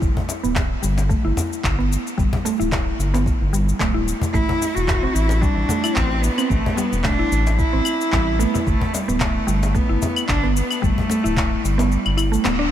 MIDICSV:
0, 0, Header, 1, 6, 480
1, 0, Start_track
1, 0, Tempo, 540541
1, 15, Time_signature, 4, 2, 24, 8
1, 11289, End_track
2, 0, Start_track
2, 0, Title_t, "Cello"
2, 0, Program_c, 0, 42
2, 3850, Note_on_c, 0, 64, 108
2, 4219, Note_on_c, 0, 66, 98
2, 4232, Note_off_c, 0, 64, 0
2, 4566, Note_on_c, 0, 64, 100
2, 4580, Note_off_c, 0, 66, 0
2, 4809, Note_on_c, 0, 62, 93
2, 4823, Note_off_c, 0, 64, 0
2, 5284, Note_on_c, 0, 60, 97
2, 5297, Note_off_c, 0, 62, 0
2, 5525, Note_on_c, 0, 59, 93
2, 5538, Note_off_c, 0, 60, 0
2, 5768, Note_on_c, 0, 57, 102
2, 5781, Note_off_c, 0, 59, 0
2, 6006, Note_on_c, 0, 59, 96
2, 6019, Note_off_c, 0, 57, 0
2, 6249, Note_on_c, 0, 62, 103
2, 6262, Note_off_c, 0, 59, 0
2, 6727, Note_off_c, 0, 62, 0
2, 6733, Note_on_c, 0, 64, 100
2, 7453, Note_on_c, 0, 59, 89
2, 7466, Note_off_c, 0, 64, 0
2, 7688, Note_off_c, 0, 59, 0
2, 7693, Note_on_c, 0, 57, 99
2, 7937, Note_on_c, 0, 55, 91
2, 7950, Note_off_c, 0, 57, 0
2, 8169, Note_off_c, 0, 55, 0
2, 8175, Note_on_c, 0, 57, 91
2, 8660, Note_on_c, 0, 59, 88
2, 8673, Note_off_c, 0, 57, 0
2, 9128, Note_off_c, 0, 59, 0
2, 9133, Note_on_c, 0, 62, 92
2, 9357, Note_off_c, 0, 62, 0
2, 9373, Note_on_c, 0, 59, 90
2, 9614, Note_on_c, 0, 57, 100
2, 9627, Note_off_c, 0, 59, 0
2, 10340, Note_on_c, 0, 55, 86
2, 10354, Note_off_c, 0, 57, 0
2, 11058, Note_off_c, 0, 55, 0
2, 11289, End_track
3, 0, Start_track
3, 0, Title_t, "Synth pluck"
3, 0, Program_c, 1, 84
3, 386, Note_on_c, 1, 59, 70
3, 489, Note_off_c, 1, 59, 0
3, 732, Note_on_c, 1, 55, 73
3, 963, Note_off_c, 1, 55, 0
3, 971, Note_on_c, 1, 57, 82
3, 1092, Note_off_c, 1, 57, 0
3, 1106, Note_on_c, 1, 64, 78
3, 1573, Note_off_c, 1, 64, 0
3, 1586, Note_on_c, 1, 59, 75
3, 1689, Note_off_c, 1, 59, 0
3, 1932, Note_on_c, 1, 55, 78
3, 2163, Note_off_c, 1, 55, 0
3, 2175, Note_on_c, 1, 57, 72
3, 2294, Note_off_c, 1, 57, 0
3, 2304, Note_on_c, 1, 64, 73
3, 2773, Note_off_c, 1, 64, 0
3, 2786, Note_on_c, 1, 59, 77
3, 2889, Note_off_c, 1, 59, 0
3, 3133, Note_on_c, 1, 55, 74
3, 3363, Note_off_c, 1, 55, 0
3, 3370, Note_on_c, 1, 57, 86
3, 3491, Note_off_c, 1, 57, 0
3, 3501, Note_on_c, 1, 64, 78
3, 3852, Note_off_c, 1, 64, 0
3, 3853, Note_on_c, 1, 57, 86
3, 3973, Note_off_c, 1, 57, 0
3, 3984, Note_on_c, 1, 64, 74
3, 4453, Note_off_c, 1, 64, 0
3, 4466, Note_on_c, 1, 60, 77
3, 4569, Note_off_c, 1, 60, 0
3, 4812, Note_on_c, 1, 55, 81
3, 5043, Note_off_c, 1, 55, 0
3, 5052, Note_on_c, 1, 57, 75
3, 5172, Note_off_c, 1, 57, 0
3, 5183, Note_on_c, 1, 64, 76
3, 5652, Note_off_c, 1, 64, 0
3, 5666, Note_on_c, 1, 60, 74
3, 5769, Note_off_c, 1, 60, 0
3, 6013, Note_on_c, 1, 55, 75
3, 6243, Note_off_c, 1, 55, 0
3, 6253, Note_on_c, 1, 57, 80
3, 6373, Note_off_c, 1, 57, 0
3, 6385, Note_on_c, 1, 64, 79
3, 6853, Note_off_c, 1, 64, 0
3, 6864, Note_on_c, 1, 60, 74
3, 6968, Note_off_c, 1, 60, 0
3, 7216, Note_on_c, 1, 55, 83
3, 7445, Note_off_c, 1, 55, 0
3, 7452, Note_on_c, 1, 57, 79
3, 7572, Note_off_c, 1, 57, 0
3, 7584, Note_on_c, 1, 64, 69
3, 7694, Note_off_c, 1, 64, 0
3, 8065, Note_on_c, 1, 59, 77
3, 8169, Note_off_c, 1, 59, 0
3, 8409, Note_on_c, 1, 55, 74
3, 8641, Note_off_c, 1, 55, 0
3, 8654, Note_on_c, 1, 57, 86
3, 8773, Note_off_c, 1, 57, 0
3, 8785, Note_on_c, 1, 64, 75
3, 9253, Note_off_c, 1, 64, 0
3, 9265, Note_on_c, 1, 59, 75
3, 9369, Note_off_c, 1, 59, 0
3, 9609, Note_on_c, 1, 55, 88
3, 9841, Note_off_c, 1, 55, 0
3, 9853, Note_on_c, 1, 57, 77
3, 9973, Note_off_c, 1, 57, 0
3, 9981, Note_on_c, 1, 64, 75
3, 10451, Note_off_c, 1, 64, 0
3, 10460, Note_on_c, 1, 59, 81
3, 10566, Note_off_c, 1, 59, 0
3, 10809, Note_on_c, 1, 64, 69
3, 10937, Note_off_c, 1, 64, 0
3, 10938, Note_on_c, 1, 57, 77
3, 11040, Note_off_c, 1, 57, 0
3, 11050, Note_on_c, 1, 59, 83
3, 11178, Note_off_c, 1, 59, 0
3, 11180, Note_on_c, 1, 62, 98
3, 11281, Note_off_c, 1, 62, 0
3, 11289, End_track
4, 0, Start_track
4, 0, Title_t, "Analog synth bass"
4, 0, Program_c, 2, 38
4, 17, Note_on_c, 2, 31, 89
4, 98, Note_off_c, 2, 31, 0
4, 390, Note_on_c, 2, 26, 83
4, 671, Note_off_c, 2, 26, 0
4, 740, Note_on_c, 2, 31, 99
4, 1029, Note_off_c, 2, 31, 0
4, 1107, Note_on_c, 2, 31, 82
4, 1174, Note_off_c, 2, 31, 0
4, 1459, Note_on_c, 2, 31, 89
4, 1749, Note_off_c, 2, 31, 0
4, 1938, Note_on_c, 2, 31, 90
4, 2018, Note_off_c, 2, 31, 0
4, 2312, Note_on_c, 2, 26, 80
4, 2592, Note_off_c, 2, 26, 0
4, 2656, Note_on_c, 2, 31, 97
4, 2947, Note_off_c, 2, 31, 0
4, 3030, Note_on_c, 2, 31, 79
4, 3311, Note_off_c, 2, 31, 0
4, 3378, Note_on_c, 2, 26, 89
4, 3668, Note_off_c, 2, 26, 0
4, 3854, Note_on_c, 2, 33, 99
4, 3937, Note_off_c, 2, 33, 0
4, 4229, Note_on_c, 2, 28, 87
4, 4511, Note_off_c, 2, 28, 0
4, 4573, Note_on_c, 2, 33, 97
4, 4866, Note_off_c, 2, 33, 0
4, 4941, Note_on_c, 2, 33, 77
4, 5011, Note_off_c, 2, 33, 0
4, 5295, Note_on_c, 2, 33, 92
4, 5587, Note_off_c, 2, 33, 0
4, 5777, Note_on_c, 2, 33, 98
4, 5858, Note_off_c, 2, 33, 0
4, 6150, Note_on_c, 2, 28, 87
4, 6431, Note_off_c, 2, 28, 0
4, 6496, Note_on_c, 2, 33, 98
4, 6787, Note_off_c, 2, 33, 0
4, 6869, Note_on_c, 2, 33, 77
4, 6935, Note_off_c, 2, 33, 0
4, 7217, Note_on_c, 2, 33, 100
4, 7508, Note_off_c, 2, 33, 0
4, 7698, Note_on_c, 2, 31, 99
4, 7778, Note_off_c, 2, 31, 0
4, 8068, Note_on_c, 2, 26, 81
4, 8350, Note_off_c, 2, 26, 0
4, 8415, Note_on_c, 2, 31, 101
4, 8707, Note_off_c, 2, 31, 0
4, 8787, Note_on_c, 2, 31, 77
4, 8854, Note_off_c, 2, 31, 0
4, 9138, Note_on_c, 2, 31, 90
4, 9428, Note_off_c, 2, 31, 0
4, 9616, Note_on_c, 2, 31, 95
4, 9697, Note_off_c, 2, 31, 0
4, 9989, Note_on_c, 2, 26, 83
4, 10271, Note_off_c, 2, 26, 0
4, 10339, Note_on_c, 2, 31, 99
4, 10629, Note_off_c, 2, 31, 0
4, 10709, Note_on_c, 2, 31, 80
4, 10991, Note_off_c, 2, 31, 0
4, 11055, Note_on_c, 2, 26, 87
4, 11289, Note_off_c, 2, 26, 0
4, 11289, End_track
5, 0, Start_track
5, 0, Title_t, "Cajon"
5, 149, Note_on_c, 9, 36, 89
5, 238, Note_off_c, 9, 36, 0
5, 254, Note_on_c, 9, 38, 68
5, 343, Note_off_c, 9, 38, 0
5, 500, Note_on_c, 9, 36, 100
5, 588, Note_off_c, 9, 36, 0
5, 867, Note_on_c, 9, 38, 75
5, 956, Note_off_c, 9, 38, 0
5, 1217, Note_on_c, 9, 36, 92
5, 1218, Note_on_c, 9, 38, 66
5, 1306, Note_off_c, 9, 36, 0
5, 1307, Note_off_c, 9, 38, 0
5, 1603, Note_on_c, 9, 38, 34
5, 1691, Note_off_c, 9, 38, 0
5, 2068, Note_on_c, 9, 36, 96
5, 2157, Note_off_c, 9, 36, 0
5, 2180, Note_on_c, 9, 38, 68
5, 2268, Note_off_c, 9, 38, 0
5, 2417, Note_on_c, 9, 36, 90
5, 2506, Note_off_c, 9, 36, 0
5, 2792, Note_on_c, 9, 38, 78
5, 2880, Note_off_c, 9, 38, 0
5, 3378, Note_on_c, 9, 38, 74
5, 3466, Note_off_c, 9, 38, 0
5, 3743, Note_on_c, 9, 36, 74
5, 3832, Note_off_c, 9, 36, 0
5, 3989, Note_on_c, 9, 36, 87
5, 4078, Note_off_c, 9, 36, 0
5, 4103, Note_on_c, 9, 38, 59
5, 4192, Note_off_c, 9, 38, 0
5, 4338, Note_on_c, 9, 36, 86
5, 4427, Note_off_c, 9, 36, 0
5, 4698, Note_on_c, 9, 38, 69
5, 4787, Note_off_c, 9, 38, 0
5, 5051, Note_on_c, 9, 36, 83
5, 5055, Note_on_c, 9, 38, 63
5, 5140, Note_off_c, 9, 36, 0
5, 5143, Note_off_c, 9, 38, 0
5, 5429, Note_on_c, 9, 38, 32
5, 5518, Note_off_c, 9, 38, 0
5, 5917, Note_on_c, 9, 36, 86
5, 6006, Note_off_c, 9, 36, 0
5, 6023, Note_on_c, 9, 38, 66
5, 6111, Note_off_c, 9, 38, 0
5, 6256, Note_on_c, 9, 36, 78
5, 6345, Note_off_c, 9, 36, 0
5, 6633, Note_on_c, 9, 38, 72
5, 6722, Note_off_c, 9, 38, 0
5, 7221, Note_on_c, 9, 38, 84
5, 7309, Note_off_c, 9, 38, 0
5, 7595, Note_on_c, 9, 36, 66
5, 7684, Note_off_c, 9, 36, 0
5, 7827, Note_on_c, 9, 36, 85
5, 7916, Note_off_c, 9, 36, 0
5, 7943, Note_on_c, 9, 38, 71
5, 8031, Note_off_c, 9, 38, 0
5, 8176, Note_on_c, 9, 36, 82
5, 8265, Note_off_c, 9, 36, 0
5, 8552, Note_on_c, 9, 38, 72
5, 8640, Note_off_c, 9, 38, 0
5, 8901, Note_on_c, 9, 36, 79
5, 8904, Note_on_c, 9, 38, 61
5, 8990, Note_off_c, 9, 36, 0
5, 8993, Note_off_c, 9, 38, 0
5, 9269, Note_on_c, 9, 38, 35
5, 9357, Note_off_c, 9, 38, 0
5, 9750, Note_on_c, 9, 36, 80
5, 9839, Note_off_c, 9, 36, 0
5, 9853, Note_on_c, 9, 38, 70
5, 9942, Note_off_c, 9, 38, 0
5, 10096, Note_on_c, 9, 36, 90
5, 10185, Note_off_c, 9, 36, 0
5, 10470, Note_on_c, 9, 38, 71
5, 10559, Note_off_c, 9, 38, 0
5, 11057, Note_on_c, 9, 38, 89
5, 11145, Note_off_c, 9, 38, 0
5, 11289, End_track
6, 0, Start_track
6, 0, Title_t, "Drums"
6, 17, Note_on_c, 9, 36, 101
6, 21, Note_on_c, 9, 69, 33
6, 105, Note_off_c, 9, 36, 0
6, 109, Note_off_c, 9, 69, 0
6, 261, Note_on_c, 9, 69, 83
6, 349, Note_off_c, 9, 69, 0
6, 394, Note_on_c, 9, 69, 43
6, 482, Note_off_c, 9, 69, 0
6, 494, Note_on_c, 9, 39, 85
6, 496, Note_on_c, 9, 36, 104
6, 501, Note_on_c, 9, 69, 31
6, 582, Note_off_c, 9, 39, 0
6, 585, Note_off_c, 9, 36, 0
6, 590, Note_off_c, 9, 69, 0
6, 739, Note_on_c, 9, 69, 75
6, 828, Note_off_c, 9, 69, 0
6, 872, Note_on_c, 9, 69, 47
6, 961, Note_off_c, 9, 69, 0
6, 976, Note_on_c, 9, 36, 105
6, 981, Note_on_c, 9, 69, 32
6, 1065, Note_off_c, 9, 36, 0
6, 1069, Note_off_c, 9, 69, 0
6, 1225, Note_on_c, 9, 69, 79
6, 1314, Note_off_c, 9, 69, 0
6, 1357, Note_on_c, 9, 69, 43
6, 1446, Note_off_c, 9, 69, 0
6, 1456, Note_on_c, 9, 36, 101
6, 1459, Note_on_c, 9, 39, 97
6, 1467, Note_on_c, 9, 69, 32
6, 1545, Note_off_c, 9, 36, 0
6, 1548, Note_off_c, 9, 39, 0
6, 1556, Note_off_c, 9, 69, 0
6, 1709, Note_on_c, 9, 69, 76
6, 1798, Note_off_c, 9, 69, 0
6, 1840, Note_on_c, 9, 69, 42
6, 1929, Note_off_c, 9, 69, 0
6, 1935, Note_on_c, 9, 36, 97
6, 1948, Note_on_c, 9, 69, 31
6, 2024, Note_off_c, 9, 36, 0
6, 2037, Note_off_c, 9, 69, 0
6, 2185, Note_on_c, 9, 69, 79
6, 2274, Note_off_c, 9, 69, 0
6, 2317, Note_on_c, 9, 69, 43
6, 2406, Note_off_c, 9, 69, 0
6, 2416, Note_on_c, 9, 36, 101
6, 2418, Note_on_c, 9, 39, 85
6, 2426, Note_on_c, 9, 69, 29
6, 2505, Note_off_c, 9, 36, 0
6, 2507, Note_off_c, 9, 39, 0
6, 2514, Note_off_c, 9, 69, 0
6, 2664, Note_on_c, 9, 69, 69
6, 2753, Note_off_c, 9, 69, 0
6, 2797, Note_on_c, 9, 69, 43
6, 2886, Note_off_c, 9, 69, 0
6, 2896, Note_on_c, 9, 36, 100
6, 2905, Note_on_c, 9, 69, 30
6, 2985, Note_off_c, 9, 36, 0
6, 2994, Note_off_c, 9, 69, 0
6, 3142, Note_on_c, 9, 69, 74
6, 3231, Note_off_c, 9, 69, 0
6, 3275, Note_on_c, 9, 69, 46
6, 3364, Note_off_c, 9, 69, 0
6, 3375, Note_on_c, 9, 36, 99
6, 3377, Note_on_c, 9, 39, 88
6, 3384, Note_on_c, 9, 69, 32
6, 3464, Note_off_c, 9, 36, 0
6, 3466, Note_off_c, 9, 39, 0
6, 3473, Note_off_c, 9, 69, 0
6, 3624, Note_on_c, 9, 69, 73
6, 3713, Note_off_c, 9, 69, 0
6, 3757, Note_on_c, 9, 69, 45
6, 3846, Note_off_c, 9, 69, 0
6, 3854, Note_on_c, 9, 36, 99
6, 3860, Note_on_c, 9, 69, 31
6, 3943, Note_off_c, 9, 36, 0
6, 3949, Note_off_c, 9, 69, 0
6, 4103, Note_on_c, 9, 69, 77
6, 4192, Note_off_c, 9, 69, 0
6, 4233, Note_on_c, 9, 69, 45
6, 4322, Note_off_c, 9, 69, 0
6, 4334, Note_on_c, 9, 36, 99
6, 4335, Note_on_c, 9, 39, 83
6, 4343, Note_on_c, 9, 69, 31
6, 4423, Note_off_c, 9, 36, 0
6, 4424, Note_off_c, 9, 39, 0
6, 4432, Note_off_c, 9, 69, 0
6, 4581, Note_on_c, 9, 69, 73
6, 4669, Note_off_c, 9, 69, 0
6, 4712, Note_on_c, 9, 69, 42
6, 4801, Note_off_c, 9, 69, 0
6, 4814, Note_on_c, 9, 36, 105
6, 4821, Note_on_c, 9, 69, 31
6, 4903, Note_off_c, 9, 36, 0
6, 4910, Note_off_c, 9, 69, 0
6, 5060, Note_on_c, 9, 69, 68
6, 5149, Note_off_c, 9, 69, 0
6, 5184, Note_on_c, 9, 75, 71
6, 5191, Note_on_c, 9, 69, 43
6, 5273, Note_off_c, 9, 75, 0
6, 5280, Note_off_c, 9, 69, 0
6, 5291, Note_on_c, 9, 39, 97
6, 5294, Note_on_c, 9, 36, 90
6, 5298, Note_on_c, 9, 69, 31
6, 5380, Note_off_c, 9, 39, 0
6, 5383, Note_off_c, 9, 36, 0
6, 5387, Note_off_c, 9, 69, 0
6, 5538, Note_on_c, 9, 69, 77
6, 5627, Note_off_c, 9, 69, 0
6, 5665, Note_on_c, 9, 75, 54
6, 5673, Note_on_c, 9, 69, 43
6, 5754, Note_off_c, 9, 75, 0
6, 5761, Note_off_c, 9, 69, 0
6, 5774, Note_on_c, 9, 36, 93
6, 5780, Note_on_c, 9, 69, 30
6, 5863, Note_off_c, 9, 36, 0
6, 5869, Note_off_c, 9, 69, 0
6, 6019, Note_on_c, 9, 69, 69
6, 6108, Note_off_c, 9, 69, 0
6, 6152, Note_on_c, 9, 69, 40
6, 6241, Note_off_c, 9, 69, 0
6, 6250, Note_on_c, 9, 39, 88
6, 6256, Note_on_c, 9, 36, 97
6, 6258, Note_on_c, 9, 69, 30
6, 6339, Note_off_c, 9, 39, 0
6, 6345, Note_off_c, 9, 36, 0
6, 6346, Note_off_c, 9, 69, 0
6, 6501, Note_on_c, 9, 69, 71
6, 6590, Note_off_c, 9, 69, 0
6, 6631, Note_on_c, 9, 69, 40
6, 6720, Note_off_c, 9, 69, 0
6, 6737, Note_on_c, 9, 36, 94
6, 6740, Note_on_c, 9, 69, 30
6, 6826, Note_off_c, 9, 36, 0
6, 6829, Note_off_c, 9, 69, 0
6, 6971, Note_on_c, 9, 75, 71
6, 6979, Note_on_c, 9, 69, 70
6, 7060, Note_off_c, 9, 75, 0
6, 7067, Note_off_c, 9, 69, 0
6, 7113, Note_on_c, 9, 69, 40
6, 7202, Note_off_c, 9, 69, 0
6, 7214, Note_on_c, 9, 39, 91
6, 7216, Note_on_c, 9, 36, 92
6, 7222, Note_on_c, 9, 69, 29
6, 7303, Note_off_c, 9, 39, 0
6, 7305, Note_off_c, 9, 36, 0
6, 7310, Note_off_c, 9, 69, 0
6, 7461, Note_on_c, 9, 69, 69
6, 7550, Note_off_c, 9, 69, 0
6, 7592, Note_on_c, 9, 69, 42
6, 7680, Note_off_c, 9, 69, 0
6, 7696, Note_on_c, 9, 36, 92
6, 7702, Note_on_c, 9, 69, 29
6, 7785, Note_off_c, 9, 36, 0
6, 7791, Note_off_c, 9, 69, 0
6, 7942, Note_on_c, 9, 69, 71
6, 8030, Note_off_c, 9, 69, 0
6, 8072, Note_on_c, 9, 69, 41
6, 8161, Note_off_c, 9, 69, 0
6, 8171, Note_on_c, 9, 39, 91
6, 8176, Note_on_c, 9, 36, 99
6, 8179, Note_on_c, 9, 69, 29
6, 8260, Note_off_c, 9, 39, 0
6, 8265, Note_off_c, 9, 36, 0
6, 8267, Note_off_c, 9, 69, 0
6, 8420, Note_on_c, 9, 69, 69
6, 8508, Note_off_c, 9, 69, 0
6, 8551, Note_on_c, 9, 69, 39
6, 8640, Note_off_c, 9, 69, 0
6, 8656, Note_on_c, 9, 36, 99
6, 8659, Note_on_c, 9, 69, 31
6, 8745, Note_off_c, 9, 36, 0
6, 8748, Note_off_c, 9, 69, 0
6, 8898, Note_on_c, 9, 69, 69
6, 8987, Note_off_c, 9, 69, 0
6, 9026, Note_on_c, 9, 75, 79
6, 9034, Note_on_c, 9, 69, 38
6, 9115, Note_off_c, 9, 75, 0
6, 9122, Note_off_c, 9, 69, 0
6, 9134, Note_on_c, 9, 39, 97
6, 9135, Note_on_c, 9, 36, 92
6, 9141, Note_on_c, 9, 69, 31
6, 9223, Note_off_c, 9, 39, 0
6, 9224, Note_off_c, 9, 36, 0
6, 9230, Note_off_c, 9, 69, 0
6, 9383, Note_on_c, 9, 69, 73
6, 9471, Note_off_c, 9, 69, 0
6, 9506, Note_on_c, 9, 75, 60
6, 9514, Note_on_c, 9, 69, 43
6, 9595, Note_off_c, 9, 75, 0
6, 9603, Note_off_c, 9, 69, 0
6, 9616, Note_on_c, 9, 36, 99
6, 9625, Note_on_c, 9, 69, 30
6, 9705, Note_off_c, 9, 36, 0
6, 9714, Note_off_c, 9, 69, 0
6, 9865, Note_on_c, 9, 69, 78
6, 9953, Note_off_c, 9, 69, 0
6, 9996, Note_on_c, 9, 69, 41
6, 10085, Note_off_c, 9, 69, 0
6, 10095, Note_on_c, 9, 36, 106
6, 10100, Note_on_c, 9, 39, 87
6, 10107, Note_on_c, 9, 69, 28
6, 10184, Note_off_c, 9, 36, 0
6, 10189, Note_off_c, 9, 39, 0
6, 10196, Note_off_c, 9, 69, 0
6, 10346, Note_on_c, 9, 69, 70
6, 10434, Note_off_c, 9, 69, 0
6, 10476, Note_on_c, 9, 69, 40
6, 10564, Note_off_c, 9, 69, 0
6, 10583, Note_on_c, 9, 69, 29
6, 10672, Note_off_c, 9, 69, 0
6, 10707, Note_on_c, 9, 75, 59
6, 10796, Note_off_c, 9, 75, 0
6, 10813, Note_on_c, 9, 75, 81
6, 10821, Note_on_c, 9, 69, 70
6, 10902, Note_off_c, 9, 75, 0
6, 10910, Note_off_c, 9, 69, 0
6, 10952, Note_on_c, 9, 69, 43
6, 11041, Note_off_c, 9, 69, 0
6, 11054, Note_on_c, 9, 39, 99
6, 11061, Note_on_c, 9, 69, 32
6, 11143, Note_off_c, 9, 39, 0
6, 11150, Note_off_c, 9, 69, 0
6, 11289, End_track
0, 0, End_of_file